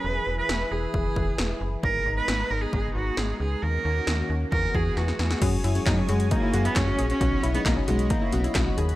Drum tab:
CC |----------------|----------------|----------------|x---------------|
HH |----------------|----------------|----------------|x-xxx-xxx-xxx-xx|
CP |----------------|----------------|----------------|----x-------x---|
SD |----o-------o---|----o-------o---|----o-------oooo|----o-------o---|
BD |--------o-o-----|o-------o-------|--------o-o-----|o---o---o---o---|

CC |----------------|
HH |x-xxx-xxx-xxx-xx|
CP |----x-------x---|
SD |----o-------o---|
BD |o---o---o---o---|